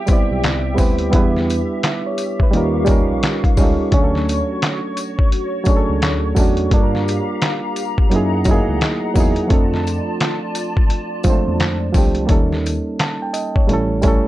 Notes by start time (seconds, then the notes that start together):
Already playing: G3 B3 C4 E4 G4 B4 E5 G5
0.07 G3 B3 C4, kick, closed hi-hat, tambourine
0.11 E4 D5
0.31 B1
0.44 C2, snare, clap, closed hi-hat
0.75 G3 B3 C4, kick, open hi-hat, tambourine
0.79 D2 E4 B4
0.98 closed hi-hat
1.10 E2 F#3 B3 D4 G4, kick, closed hi-hat
1.14 G3 E4 B4
1.36 snare
1.50 closed hi-hat, tambourine
1.83 E5, snare, clap, closed hi-hat
2.06 C#5
2.18 closed hi-hat, tambourine
2.40 B4, kick
2.51 D#2 G3 C#4 D#4 F5 C#6, closed hi-hat
2.55 F4 A#4
2.85 G3 C#4 D#4, kick, closed hi-hat, tambourine
2.90 F4 A#4
3.10 A#1
3.23 snare, clap, closed hi-hat
3.44 kick, closed hi-hat
3.57 C#2 G3 C#4 D#4, kick, open hi-hat, tambourine
3.62 F4 A4
3.91 D2 F#3 A3 C#4 F#4 C#5, kick, closed hi-hat
3.96 D4 G#4
4.04 A4
4.15 snare
4.29 closed hi-hat, tambourine
4.62 snare, clap, closed hi-hat
4.97 closed hi-hat, tambourine
5.19 kick
5.32 closed hi-hat
5.64 F#3 A3 C#4, kick, closed hi-hat, tambourine
5.68 D4 G#4
5.77 A4
5.90 C#2
6.02 D2, snare, clap, closed hi-hat
6.35 E2 F#3 A3 C#4, kick, open hi-hat, tambourine
6.40 D4 F#4
6.57 closed hi-hat
6.71 G2 G3 A#3 D4 G4 F5 A#5, kick, closed hi-hat
6.75 F4 A4
6.83 A#4
6.95 snare
7.08 closed hi-hat, tambourine
7.42 snare, clap, closed hi-hat
7.76 closed hi-hat, tambourine
7.98 kick
8.10 F#2 F#3 A#3 D#4 G#4 D#5 F#5, closed hi-hat
8.14 E4 G#4
8.44 F#3 A3 D#4, kick, closed hi-hat, tambourine
8.50 A#3 E4 G#4
8.69 C#2
8.81 snare, clap, closed hi-hat
9.14 E2 F#3 A#3 D#4, kick, open hi-hat, tambourine
9.19 E4 G#4
9.36 closed hi-hat
9.47 F2 F3 A3 C4 F4 D5 A5, kick, closed hi-hat
9.52 D4 A4
9.74 snare
9.87 closed hi-hat, tambourine
10.20 snare, clap, closed hi-hat
10.55 closed hi-hat, tambourine
10.77 kick
10.90 closed hi-hat
11.23 F3 G#3 C4, kick, closed hi-hat, tambourine
11.28 A3 D4 C5
11.47 E2
11.60 F2, snare, clap, closed hi-hat
11.92 C2 F3 A3 C4, kick, open hi-hat, tambourine
11.97 D4 G4
12.15 closed hi-hat
12.25 G3 A#3 C#4, kick, closed hi-hat
12.30 D#2 D#4 A4
12.52 snare
12.66 closed hi-hat, tambourine
12.99 A5, snare, clap, closed hi-hat
13.22 G5
13.33 D#5, closed hi-hat, tambourine
13.55 C#5, kick
13.67 A1 G3 A3 C#4, closed hi-hat
13.72 E4 A4
14.02 G3 A3 C#4, kick, closed hi-hat, tambourine
14.06 E4 A4